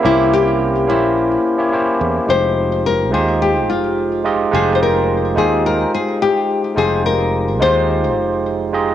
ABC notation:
X:1
M:4/4
L:1/16
Q:1/4=107
K:Fm
V:1 name="Nylon-string guitar"
=E2 G4 E8 z2 | c4 B2 A2 G2 F4 z2 | A3/2 c/2 B4 A2 B2 A2 G3 z | A2 B4 c8 z2 |]
V:2 name="Tine electric piano"
[B,D=EGc]6 [B,DEGc]4- [B,DEGc] [B,DEGd] [B,DEGc]4 | [A,EFGc]6 [A,EFGc]8 [A,EFGe]2 | [A,EFGc]6 [A,EFGc]8- [A,EFGc]2 | [A,EFGc]6 [A,EFGc]8 [A,EFGe]2 |]
V:3 name="Fretless electric bass" clef=bass
C,,6 B,,,4 z4 =E,,2 | F,,,6 E,,4 F,,,6 | F,,,6 E,,4 z6 | F,,,6 E,,4 F,,,6 |]